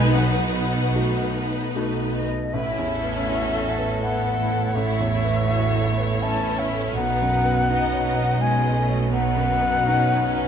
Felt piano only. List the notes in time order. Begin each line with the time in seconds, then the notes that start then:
Already playing: B1 B2 A3 B3 D#4 F#4 G#5 B5
0.15 B1 B2 F#5
0.95 A3 D#4 F#4
1.76 A3 D#4 F#4
2.54 A1
2.79 E2
3.03 B3
3.28 E4
3.53 A4
3.78 B4
4.02 E5
4.26 B4
4.51 A4
4.76 A1
5.00 E2
5.25 B3
5.50 E4
5.74 A4
5.99 B4
6.23 E5
6.48 B4
6.73 A4
6.97 B1
7.22 F#2
7.46 B3
7.70 D#4
7.93 C#5
8.16 B4
8.41 D#5
8.64 B4
8.89 C#5
9.13 B1
9.36 F#2
9.62 B3
9.86 D#4
10.12 C#5
10.37 B4